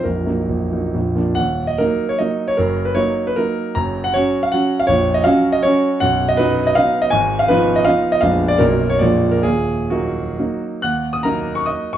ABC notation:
X:1
M:3/4
L:1/16
Q:1/4=154
K:Ebm
V:1 name="Grand piano"
B8- B2 z2 | g3 e B3 d e3 d | B3 c d3 c B4 | b3 g d3 f g3 f |
d3 e f3 e d4 | ^f3 ^d =B3 d =f3 d | a3 f c3 e f3 e | f3 =d ^A3 _d =d3 B |
A4 G6 z2 | [gg']3 e' [Bb]3 d' [ee']3 d' |]
V:2 name="Grand piano" clef=bass
[B,,,,B,,,]2 [G,B,E]2 [B,,,,B,,,]2 [G,B,E]2 [B,,,,B,,,]2 [F,B,=D]2 | [E,,,E,,]4 [G,B,E]4 [G,B,E]4 | [G,,,G,,]4 [G,B,E]4 [G,B,E]4 | [G,,,G,,]4 [G,DG]4 [G,DG]4 |
[B,,,,B,,,]4 [G,DG]4 [G,DG]4 | [=B,,,,=B,,,]4 [^F,=B,^D]4 [F,B,D]4 | [A,,,A,,]4 [F,CE]4 [F,CE]4 | [B,,,,B,,,A,C=D]4 [=B,,,,=B,,,^F,^A,^D]4 [_B,,,,_B,,,_A,B,=F]4 |
[E,,,E,,]4 [G,B,E]4 [G,B,E]4 | E,,4 [G,B,E]8 |]